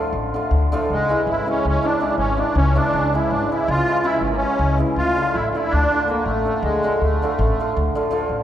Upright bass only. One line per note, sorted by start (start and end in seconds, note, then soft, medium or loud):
0.13 0.36 A1 medium
0.51 0.74 D2 loud
0.90 1.12 C#2 medium
1.27 1.39 G#1 medium
1.65 1.76 C#2 loud
2.18 2.40 G#1 medium
2.55 2.78 C#2 loud
2.93 3.16 C#2 medium
3.31 3.43 G#1 medium
3.68 3.80 C#2 loud
4.20 4.43 G#1 medium
4.59 4.82 C#2 loud
4.96 5.19 D2 medium
5.35 5.47 A1 medium
5.73 5.84 D2 loud
6.25 6.48 A1 medium
6.63 6.85 D2 loud
7.01 7.24 D2 medium
7.39 7.51 A1 loud
7.77 7.88 D2 loud
8.29 8.43 A1 medium